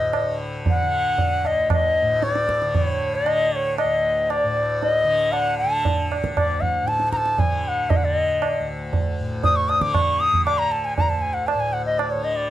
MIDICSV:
0, 0, Header, 1, 4, 480
1, 0, Start_track
1, 0, Tempo, 518583
1, 1575, Time_signature, 4, 2, 24, 8
1, 5886, Tempo, 510638
1, 11658, End_track
2, 0, Start_track
2, 0, Title_t, "Bansuri"
2, 0, Program_c, 0, 73
2, 0, Note_on_c, 0, 75, 78
2, 331, Note_off_c, 0, 75, 0
2, 641, Note_on_c, 0, 78, 88
2, 1354, Note_on_c, 0, 75, 79
2, 1368, Note_off_c, 0, 78, 0
2, 1585, Note_off_c, 0, 75, 0
2, 1598, Note_on_c, 0, 75, 86
2, 2064, Note_on_c, 0, 74, 86
2, 2078, Note_off_c, 0, 75, 0
2, 2550, Note_off_c, 0, 74, 0
2, 2550, Note_on_c, 0, 74, 84
2, 2651, Note_off_c, 0, 74, 0
2, 2651, Note_on_c, 0, 73, 84
2, 2913, Note_on_c, 0, 75, 81
2, 2927, Note_off_c, 0, 73, 0
2, 3260, Note_on_c, 0, 74, 81
2, 3274, Note_off_c, 0, 75, 0
2, 3291, Note_on_c, 0, 73, 88
2, 3300, Note_off_c, 0, 74, 0
2, 3491, Note_off_c, 0, 73, 0
2, 3496, Note_on_c, 0, 75, 87
2, 3982, Note_on_c, 0, 74, 89
2, 3996, Note_off_c, 0, 75, 0
2, 4460, Note_on_c, 0, 75, 93
2, 4474, Note_off_c, 0, 74, 0
2, 4922, Note_on_c, 0, 78, 93
2, 4936, Note_off_c, 0, 75, 0
2, 5161, Note_off_c, 0, 78, 0
2, 5167, Note_on_c, 0, 81, 91
2, 5614, Note_off_c, 0, 81, 0
2, 5882, Note_on_c, 0, 74, 89
2, 6121, Note_on_c, 0, 78, 87
2, 6135, Note_off_c, 0, 74, 0
2, 6372, Note_on_c, 0, 81, 98
2, 6386, Note_off_c, 0, 78, 0
2, 6596, Note_off_c, 0, 81, 0
2, 6602, Note_on_c, 0, 82, 89
2, 6647, Note_on_c, 0, 81, 96
2, 6657, Note_off_c, 0, 82, 0
2, 6857, Note_on_c, 0, 80, 82
2, 6871, Note_off_c, 0, 81, 0
2, 7092, Note_off_c, 0, 80, 0
2, 7092, Note_on_c, 0, 80, 80
2, 7128, Note_on_c, 0, 78, 86
2, 7137, Note_off_c, 0, 80, 0
2, 7331, Note_on_c, 0, 75, 75
2, 7345, Note_off_c, 0, 78, 0
2, 7394, Note_on_c, 0, 78, 64
2, 7408, Note_off_c, 0, 75, 0
2, 7470, Note_on_c, 0, 74, 80
2, 7484, Note_off_c, 0, 78, 0
2, 7583, Note_off_c, 0, 74, 0
2, 7583, Note_on_c, 0, 75, 80
2, 8063, Note_off_c, 0, 75, 0
2, 8783, Note_on_c, 0, 87, 102
2, 8895, Note_on_c, 0, 85, 91
2, 8909, Note_off_c, 0, 87, 0
2, 9014, Note_on_c, 0, 87, 101
2, 9028, Note_off_c, 0, 85, 0
2, 9135, Note_on_c, 0, 86, 90
2, 9149, Note_off_c, 0, 87, 0
2, 9251, Note_on_c, 0, 85, 98
2, 9265, Note_off_c, 0, 86, 0
2, 9495, Note_on_c, 0, 87, 98
2, 9509, Note_off_c, 0, 85, 0
2, 9726, Note_off_c, 0, 87, 0
2, 9732, Note_on_c, 0, 86, 97
2, 9856, Note_on_c, 0, 82, 94
2, 9870, Note_off_c, 0, 86, 0
2, 9980, Note_on_c, 0, 81, 88
2, 9994, Note_off_c, 0, 82, 0
2, 10102, Note_on_c, 0, 80, 90
2, 10116, Note_off_c, 0, 81, 0
2, 10216, Note_off_c, 0, 80, 0
2, 10222, Note_on_c, 0, 82, 96
2, 10335, Note_on_c, 0, 81, 84
2, 10350, Note_off_c, 0, 82, 0
2, 10450, Note_on_c, 0, 80, 81
2, 10464, Note_off_c, 0, 81, 0
2, 10564, Note_on_c, 0, 78, 75
2, 10578, Note_off_c, 0, 80, 0
2, 10689, Note_on_c, 0, 81, 90
2, 10703, Note_off_c, 0, 78, 0
2, 10810, Note_on_c, 0, 80, 84
2, 10824, Note_off_c, 0, 81, 0
2, 10934, Note_on_c, 0, 78, 84
2, 10948, Note_off_c, 0, 80, 0
2, 11050, Note_off_c, 0, 78, 0
2, 11056, Note_on_c, 0, 75, 76
2, 11175, Note_on_c, 0, 74, 82
2, 11189, Note_off_c, 0, 75, 0
2, 11291, Note_on_c, 0, 73, 78
2, 11305, Note_off_c, 0, 74, 0
2, 11413, Note_on_c, 0, 75, 73
2, 11427, Note_off_c, 0, 73, 0
2, 11529, Note_on_c, 0, 74, 69
2, 11543, Note_off_c, 0, 75, 0
2, 11649, Note_off_c, 0, 74, 0
2, 11658, End_track
3, 0, Start_track
3, 0, Title_t, "Tanpura"
3, 0, Program_c, 1, 104
3, 0, Note_on_c, 1, 38, 54
3, 0, Note_on_c, 1, 45, 60
3, 0, Note_on_c, 1, 50, 52
3, 196, Note_off_c, 1, 50, 0
3, 196, Note_on_c, 1, 50, 47
3, 762, Note_off_c, 1, 50, 0
3, 762, Note_on_c, 1, 50, 59
3, 1312, Note_off_c, 1, 38, 0
3, 1316, Note_on_c, 1, 38, 55
3, 1864, Note_off_c, 1, 45, 0
3, 1868, Note_on_c, 1, 45, 66
3, 2429, Note_off_c, 1, 50, 0
3, 2429, Note_on_c, 1, 50, 54
3, 2999, Note_off_c, 1, 50, 0
3, 2999, Note_on_c, 1, 50, 60
3, 3550, Note_off_c, 1, 38, 0
3, 3554, Note_on_c, 1, 38, 56
3, 4102, Note_off_c, 1, 45, 0
3, 4105, Note_on_c, 1, 45, 61
3, 4666, Note_off_c, 1, 50, 0
3, 4666, Note_on_c, 1, 50, 63
3, 5218, Note_off_c, 1, 50, 0
3, 5218, Note_on_c, 1, 50, 64
3, 5759, Note_off_c, 1, 38, 0
3, 5763, Note_on_c, 1, 38, 57
3, 6317, Note_off_c, 1, 45, 0
3, 6321, Note_on_c, 1, 45, 53
3, 6872, Note_off_c, 1, 50, 0
3, 6872, Note_on_c, 1, 50, 53
3, 7431, Note_off_c, 1, 50, 0
3, 7431, Note_on_c, 1, 50, 58
3, 7985, Note_off_c, 1, 38, 0
3, 7989, Note_on_c, 1, 38, 64
3, 8552, Note_off_c, 1, 45, 0
3, 8556, Note_on_c, 1, 45, 59
3, 9118, Note_off_c, 1, 50, 0
3, 9118, Note_on_c, 1, 50, 62
3, 9664, Note_off_c, 1, 50, 0
3, 9664, Note_on_c, 1, 50, 57
3, 10222, Note_off_c, 1, 38, 0
3, 10226, Note_on_c, 1, 38, 57
3, 10760, Note_off_c, 1, 45, 0
3, 10764, Note_on_c, 1, 45, 52
3, 11329, Note_off_c, 1, 50, 0
3, 11329, Note_on_c, 1, 50, 60
3, 11658, Note_off_c, 1, 38, 0
3, 11658, Note_off_c, 1, 45, 0
3, 11658, Note_off_c, 1, 50, 0
3, 11658, End_track
4, 0, Start_track
4, 0, Title_t, "Tabla"
4, 124, Note_on_c, 9, 60, 71
4, 216, Note_off_c, 9, 60, 0
4, 610, Note_on_c, 9, 63, 74
4, 610, Note_on_c, 9, 64, 69
4, 703, Note_off_c, 9, 63, 0
4, 703, Note_off_c, 9, 64, 0
4, 1094, Note_on_c, 9, 63, 75
4, 1094, Note_on_c, 9, 64, 63
4, 1187, Note_off_c, 9, 63, 0
4, 1187, Note_off_c, 9, 64, 0
4, 1340, Note_on_c, 9, 60, 58
4, 1433, Note_off_c, 9, 60, 0
4, 1575, Note_on_c, 9, 60, 74
4, 1575, Note_on_c, 9, 64, 71
4, 1667, Note_off_c, 9, 60, 0
4, 1667, Note_off_c, 9, 64, 0
4, 2059, Note_on_c, 9, 62, 67
4, 2152, Note_off_c, 9, 62, 0
4, 2180, Note_on_c, 9, 62, 62
4, 2272, Note_off_c, 9, 62, 0
4, 2303, Note_on_c, 9, 37, 59
4, 2396, Note_off_c, 9, 37, 0
4, 2423, Note_on_c, 9, 62, 56
4, 2515, Note_off_c, 9, 62, 0
4, 2541, Note_on_c, 9, 63, 73
4, 2541, Note_on_c, 9, 64, 62
4, 2634, Note_off_c, 9, 63, 0
4, 2634, Note_off_c, 9, 64, 0
4, 3020, Note_on_c, 9, 60, 83
4, 3113, Note_off_c, 9, 60, 0
4, 3502, Note_on_c, 9, 60, 75
4, 3595, Note_off_c, 9, 60, 0
4, 3983, Note_on_c, 9, 60, 76
4, 4075, Note_off_c, 9, 60, 0
4, 4467, Note_on_c, 9, 63, 78
4, 4559, Note_off_c, 9, 63, 0
4, 4934, Note_on_c, 9, 60, 74
4, 5027, Note_off_c, 9, 60, 0
4, 5415, Note_on_c, 9, 63, 76
4, 5415, Note_on_c, 9, 64, 66
4, 5508, Note_off_c, 9, 63, 0
4, 5508, Note_off_c, 9, 64, 0
4, 5662, Note_on_c, 9, 60, 58
4, 5755, Note_off_c, 9, 60, 0
4, 5774, Note_on_c, 9, 37, 57
4, 5867, Note_off_c, 9, 37, 0
4, 5896, Note_on_c, 9, 60, 72
4, 5896, Note_on_c, 9, 64, 67
4, 5990, Note_off_c, 9, 60, 0
4, 5990, Note_off_c, 9, 64, 0
4, 6133, Note_on_c, 9, 64, 51
4, 6227, Note_off_c, 9, 64, 0
4, 6373, Note_on_c, 9, 62, 77
4, 6467, Note_off_c, 9, 62, 0
4, 6485, Note_on_c, 9, 62, 54
4, 6579, Note_off_c, 9, 62, 0
4, 6606, Note_on_c, 9, 37, 60
4, 6700, Note_off_c, 9, 37, 0
4, 6729, Note_on_c, 9, 62, 58
4, 6823, Note_off_c, 9, 62, 0
4, 6851, Note_on_c, 9, 63, 81
4, 6851, Note_on_c, 9, 64, 69
4, 6945, Note_off_c, 9, 63, 0
4, 6945, Note_off_c, 9, 64, 0
4, 7337, Note_on_c, 9, 63, 99
4, 7337, Note_on_c, 9, 64, 91
4, 7431, Note_off_c, 9, 63, 0
4, 7431, Note_off_c, 9, 64, 0
4, 7824, Note_on_c, 9, 60, 74
4, 7918, Note_off_c, 9, 60, 0
4, 8303, Note_on_c, 9, 63, 73
4, 8303, Note_on_c, 9, 64, 70
4, 8397, Note_off_c, 9, 63, 0
4, 8397, Note_off_c, 9, 64, 0
4, 8777, Note_on_c, 9, 63, 80
4, 8777, Note_on_c, 9, 64, 70
4, 8871, Note_off_c, 9, 63, 0
4, 8871, Note_off_c, 9, 64, 0
4, 9021, Note_on_c, 9, 60, 57
4, 9115, Note_off_c, 9, 60, 0
4, 9134, Note_on_c, 9, 37, 59
4, 9228, Note_off_c, 9, 37, 0
4, 9257, Note_on_c, 9, 60, 70
4, 9257, Note_on_c, 9, 64, 68
4, 9351, Note_off_c, 9, 60, 0
4, 9351, Note_off_c, 9, 64, 0
4, 9501, Note_on_c, 9, 62, 56
4, 9595, Note_off_c, 9, 62, 0
4, 9626, Note_on_c, 9, 64, 56
4, 9720, Note_off_c, 9, 64, 0
4, 9748, Note_on_c, 9, 60, 74
4, 9842, Note_off_c, 9, 60, 0
4, 10227, Note_on_c, 9, 63, 70
4, 10227, Note_on_c, 9, 64, 71
4, 10321, Note_off_c, 9, 63, 0
4, 10321, Note_off_c, 9, 64, 0
4, 10701, Note_on_c, 9, 60, 77
4, 10795, Note_off_c, 9, 60, 0
4, 11182, Note_on_c, 9, 60, 78
4, 11276, Note_off_c, 9, 60, 0
4, 11658, End_track
0, 0, End_of_file